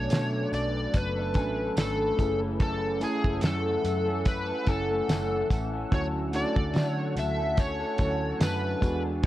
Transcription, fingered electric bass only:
0.12 0.45 B2 loud
0.52 0.86 B1 loud
0.94 1.35 F#1 loud
1.35 1.69 A1 medium
1.77 2.10 G#1 medium
2.18 3.03 F#1 loud
3.24 3.39 F#1 medium
3.43 3.76 F#2 loud
3.84 4.51 F#2 medium
4.67 5.00 F#1 medium
5.08 5.42 F#1 medium
5.50 5.84 A1 medium
5.92 6.43 D2 loud
6.56 6.71 D2 medium
6.74 7.17 D3 loud
7.16 7.82 D2 medium
7.99 8.32 D2 medium
8.40 8.74 F#2 medium
8.82 9.26 E2 loud

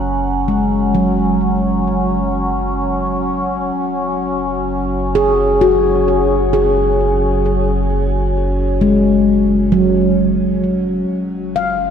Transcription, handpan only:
0.00 0.91 F#5 soft
0.48 1.37 G#3 medium
0.95 3.22 F#3 medium
5.15 6.03 G#4 medium
5.61 6.49 F#4 medium
6.53 8.77 G#4 medium
8.81 9.68 G#3 medium
9.72 11.28 F#3 medium
11.56 11.90 F5 soft

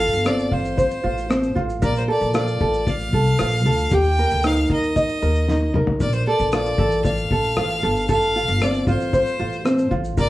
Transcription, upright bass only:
0.13 0.45 G1 medium
0.52 0.84 A1 medium
1.04 1.47 A1 medium
1.56 1.78 A1 medium
1.83 2.04 A#1 medium
2.21 2.53 A#1 medium
2.61 3.13 A1 medium
3.13 3.35 C2 medium
3.40 3.66 A#1 medium
3.66 3.87 D2 medium
3.92 4.24 D#2 loud
4.31 4.63 D2 medium
4.70 5.02 D#2 medium
5.22 5.75 D#2 medium
5.75 5.96 A1 medium
6.00 6.22 A#1 medium
6.40 6.72 A#1 medium
6.78 7.21 A1 medium
7.31 7.52 A#1 medium
7.57 7.78 A1 medium
7.83 8.09 G1 medium
8.09 8.41 A1 medium
8.48 8.80 G1 medium
8.87 9.19 A1 medium
9.40 9.82 A1 medium
9.92 10.13 A1 medium
10.18 10.29 A#1 loud

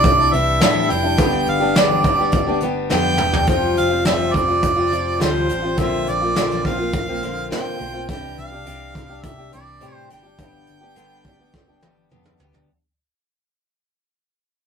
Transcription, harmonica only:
0.00 0.34 D5 medium
0.33 0.92 E5 medium
0.90 1.47 G5 medium
1.49 1.80 F5 medium
1.79 2.63 D5 medium
2.93 3.45 G5 loud
3.49 3.75 G5 medium
3.78 4.04 F5 medium
4.06 4.35 E5 medium
4.33 5.20 D5 medium
5.21 5.81 C5 medium
5.79 6.10 E5 medium
6.08 6.65 D5 medium
6.66 7.47 F5 medium
7.52 8.05 G5 medium
8.10 8.36 G5 medium
8.39 9.25 F5 medium
9.23 9.52 E5 medium
9.53 9.94 D5 medium
9.94 10.06 C5 medium
10.11 12.07 G5 medium

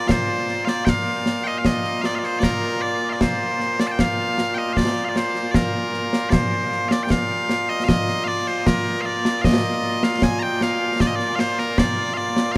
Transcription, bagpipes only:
0.00 12.57 A#2 medium
0.00 12.57 A#3 medium
0.00 12.57 F4 medium
0.08 0.65 C5 loud
0.08 0.11 F5 loud
0.65 0.85 D5 medium
0.65 0.69 F5 medium
0.85 1.44 F5 loud
0.85 0.89 G5 loud
1.44 1.58 D#5 medium
1.44 1.47 G5 medium
1.58 1.66 F5 medium
1.66 2.02 D#5 medium
2.02 2.15 D5 loud
2.02 2.05 F5 loud
2.15 2.25 D5 medium
2.15 2.19 F5 medium
2.25 2.39 C5 medium
2.39 2.44 D5 medium
2.44 2.82 A#4 medium
2.82 3.10 D5 medium
3.10 3.21 D5 medium
3.10 3.13 F5 medium
3.21 3.80 C5 medium
3.80 3.87 D5 medium
3.87 3.92 A5 medium
3.92 4.00 G5 medium
4.00 4.54 F5 loud
4.54 4.73 D#5 medium
4.54 4.58 G5 medium
4.73 5.05 D5 medium
4.73 4.77 F5 medium
5.05 5.09 F5 medium
5.09 5.17 D5 medium
5.17 5.51 C5 medium
5.51 6.30 A#4 medium
5.51 5.55 D5 medium
6.30 6.89 C5 medium
6.30 6.33 D5 medium
6.89 7.03 D5 medium
6.89 6.92 F5 medium
7.03 7.11 G5 medium
7.11 7.69 F5 loud
7.69 7.84 D#5 medium
7.84 7.89 F5 loud
7.89 8.24 D#5 loud
8.24 8.47 D5 loud
8.24 8.28 F5 loud
8.47 8.67 C5 loud
8.67 9.01 A#4 medium
9.01 9.06 F5 medium
9.06 9.42 D5 medium
9.42 10.04 D#5 medium
9.42 9.45 F5 medium
10.04 10.23 F5 loud
10.23 10.39 G#5 loud
10.39 10.62 G5 loud
10.39 10.43 A#5 loud
10.62 11.01 F5 loud
11.01 11.07 D5 loud
11.07 11.15 D#5 medium
11.15 11.36 D5 loud
11.36 11.40 F5 loud
11.40 11.59 C5 loud
11.59 11.79 A#4 medium
11.79 12.14 D5 loud
12.14 12.52 D5 medium
12.14 12.17 F5 medium
12.52 12.56 F5 loud

